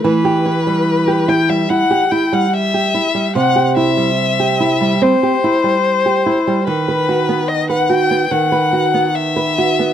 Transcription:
X:1
M:4/4
L:1/16
Q:1/4=72
K:Em
V:1 name="Violin"
B6 g e f2 g f e4 | f2 e6 c8 | B4 ^d f g2 f4 e4 |]
V:2 name="Nylon-string guitar"
E, G E G,2 G E G, E G E G,2 G E G, | C, G E G,2 G E G, C G E G,2 G E G, | ^D, B F B,2 B F B, D, B F B,2 B F B, |]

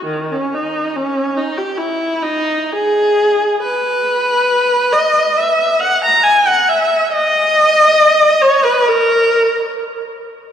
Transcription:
X:1
M:4/4
L:1/16
Q:1/4=69
K:D#phr
V:1 name="Viola"
D, C D2 C2 D =G E2 D2 ^G4 | B6 d2 e2 f a g f e2 | d6 c B A4 z4 |]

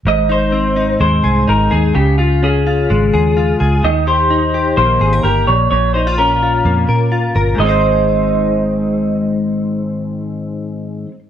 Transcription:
X:1
M:4/4
L:1/16
Q:1/4=128
K:Ab
V:1 name="Clean electric guitar"
e2 c6 c4 B2 A2 | G2 F2 A8- A2 z2 | e2 c6 c4 B2 d2 | d2 c2 B8- B2 z2 |
e16- | e16 |]
V:2 name="Clean electric guitar"
A,,2 E2 C2 E2 A,2 A2 E2 A2 | D,2 F2 D2 F2 A,2 A2 F2 A2 | E,2 G2 E2 G2 B,2 A B G2 B,,2 | B,,2 E F D2 F2 B,2 B2 F2 B2 |
[A,,E,A,CEc]16- | [A,,E,A,CEc]16 |]
V:3 name="Fingered electric bass" clef=bass
A,,,8 E,,2 C,,2 A,,,2 E,,2 | D,,8 A,,,2 E,,4 D,,2 | E,,8 B,,,2 A,,,2 G,,,2 B,,,2 | B,,,8 F,,2 B,,4 G,,,2 |
A,,,16- | A,,,16 |]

